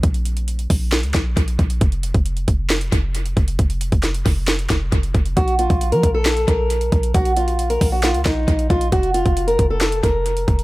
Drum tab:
HH |xxxxxxo-xxx-xxxx|xxxxxxx-xxx-xxxx|xxxxxxo-xxx-xxxx|xxxxxxx-xxx-xxxx|
CP |--------x-x-----|--------x-------|----x---x-x-----|--------x-------|
SD |--------o-o-----|--------o-------|----o---o-o-----|--------o-------|
BD |o-----o---o-o-o-|o--o--o---o---o-|o--o--o---o-o-o-|o--o--o---o---o-|

HH |xxxxxxo-xxx-xxxx|xxxxxxx-xxx-xxxx|
CP |--------x-x-----|--------x-------|
SD |--------o-o-----|--------o-------|
BD |o-----o---o-o-o-|o--o--o---o---o-|